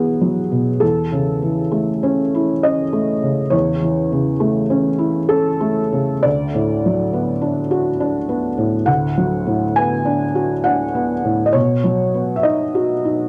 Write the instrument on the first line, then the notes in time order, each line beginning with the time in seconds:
felt piano
Already playing: E2 B2 E3 F#3 B3 E4 G#4 B4
0.21 F#3
0.51 B2
0.80 E2 A4
1.12 C#3
1.42 E3
1.72 A3
2.03 C#4
2.35 E4
2.63 C#4 D#5
2.93 A3
3.22 C#3
3.50 E2 C#5
3.82 E3
4.12 C#3
4.40 A3
4.70 C#4
4.98 E4
5.29 C#4 A4
5.61 A3
5.92 C#3
6.23 D2 D5
6.54 A2
6.86 F#3
7.13 B3
7.41 D4
7.71 F#4
8.00 D4
8.29 B3
8.57 A2
8.86 D2 F#5
9.17 F#3
9.46 A2
9.76 B3 G#5
10.05 D4
10.35 F#4
10.64 D4 F#5
10.95 B3
11.24 A2
11.46 D#5
11.53 B2 C#5
11.84 F#3
12.14 B3
12.36 E5
12.43 D#4 D#5
12.75 F#4
13.05 D#4